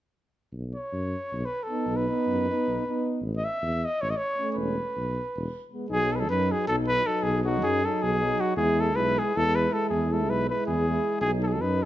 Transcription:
0.52 tuba B1
0.75 trumpet C#5
0.93 tuba F#2
1.33 tuba B1
1.45 trumpet B4
1.63 trumpet A4
1.70 euphonium B3, trombone D#4
1.86 tuba B1
1.96 trumpet B4
2.09 euphonium B3, trombone D#4
2.27 tuba F#2
2.49 euphonium B3, trombone D#4
2.68 tuba B1
2.87 euphonium B3, trombone D#4
3.21 tuba A1
3.36 trumpet D#5
3.44 trumpet E5
3.62 tuba E2
3.85 trumpet D#5
4.01 tuba A1, trumpet C#5
4.10 trumpet D#5
4.17 trumpet C#5
4.38 euphonium A3, trombone C#4
4.51 trumpet B4 C#5
4.56 tuba E1
4.96 tuba B1
5.36 tuba E1
5.73 euphonium G#3, trombone B3
5.89 tuba B1, euphonium F#3, trombone D#4, trumpet G#4
6.12 trumpet A4 B4
6.20 trumpet A4
6.29 tuba F#2, euphonium F#3, trombone D#4, trumpet B4
6.52 trumpet G#4
6.67 tuba B1, euphonium F#3, trombone D#4, trumpet A4
6.88 trumpet B4
7.06 euphonium F#3, trombone D#4, trumpet A4
7.23 tuba B1, trumpet G#4
7.42 euphonium F#3, trombone D#4, trumpet F#4 G#4
7.63 tuba F#2, trumpet G#4
7.84 euphonium F#3, trombone D#4, trumpet A4
8.02 tuba B1, trumpet G#4
8.20 trombone D#4
8.24 euphonium F#3
8.40 trumpet F#4
8.56 tuba E2, euphonium G#3, trombone E4, trumpet G#4
8.80 trumpet A4
8.95 tuba B1, euphonium G#3, trombone E4, trumpet B4
9.19 trumpet G#4
9.35 tuba E2, euphonium G#3, trombone E4, trumpet A4
9.55 trumpet B4
9.70 euphonium G#3, trombone E4, trumpet A4
9.90 tuba E2, trumpet G#4
10.10 euphonium G#3, trombone E4, trumpet A4
10.28 tuba B1, trumpet B4
10.49 euphonium G#3, trombone E4, trumpet B4
10.67 tuba E2, trumpet G#4
10.88 euphonium G#3, trombone E4
11.21 tuba B1, euphonium F#3, trombone D#4, trumpet G#4
11.43 trumpet A4
11.48 trumpet G#4
11.53 trumpet A4
11.61 tuba F#2, euphonium F#3, trombone D#4, trumpet B4

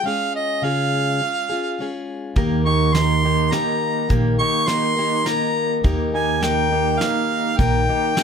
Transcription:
0.04 steel-string acoustic guitar G#3 C#4 F4 G#4, harmonica F5
0.35 harmonica D#5
0.62 steel-string acoustic guitar C#3 G#3 C#4 F4 G#4, harmonica F5
1.21 steel-string acoustic guitar G#3 C#4 F4 G#4
1.49 steel-string acoustic guitar C#4 F4 G#4
1.79 steel-string acoustic guitar G#3 C#4 F4 G#4
2.36 upright bass D#2, steel-string acoustic guitar D#3 A#3 D#4 G4 A#4, clean electric guitar A#3, kick, closed hi-hat
2.65 clean electric guitar A#3 D#4 G4, harmonica C#6
2.93 steel-string acoustic guitar A#3 D#4 G4 A#4, clean electric guitar D#4, harmonica C6, snare, closed hi-hat
3.24 clean electric guitar A#3 D#4 G4
3.51 steel-string acoustic guitar A#3 D#4 G4 A#4, clean electric guitar A#3, harmonica A#5, snare, closed hi-hat
4.09 upright bass A#1, steel-string acoustic guitar D#3 A#3 D#4 G4 A#4, clean electric guitar A#3, kick, closed hi-hat
4.39 clean electric guitar A#3 D#4 G4, harmonica C#6
4.67 steel-string acoustic guitar A#3 D#4 G4 A#4, clean electric guitar D#4, harmonica C6, snare, closed hi-hat
4.96 clean electric guitar A#3 D#4 G4, steel-string acoustic guitar D#4 G4 A#4
5.24 steel-string acoustic guitar A#3 D#4 G4 A#4, clean electric guitar A#3, harmonica A#5, snare, closed hi-hat
5.83 upright bass D#2, steel-string acoustic guitar D#3 A#3 D#4 G4 A#4, clean electric guitar A#3, kick, closed hi-hat
6.13 clean electric guitar A#3 D#4 G4, harmonica G#5
6.41 steel-string acoustic guitar A#3 D#4 G4 A#4, clean electric guitar D#4, harmonica G5, snare, closed hi-hat
6.72 clean electric guitar A#3 D#4 G4
6.99 steel-string acoustic guitar A#3 D#4 G4, clean electric guitar A#3, harmonica F5, snare, closed hi-hat
7.03 steel-string acoustic guitar A#4
7.57 upright bass A#1, steel-string acoustic guitar D#3 A#3 D#4 G4 A#4, clean electric guitar A#3, harmonica G5, kick, closed hi-hat
7.88 clean electric guitar A#3 D#4 G4
8.15 steel-string acoustic guitar A#3 D#4 G4 A#4, clean electric guitar D#4, snare, closed hi-hat

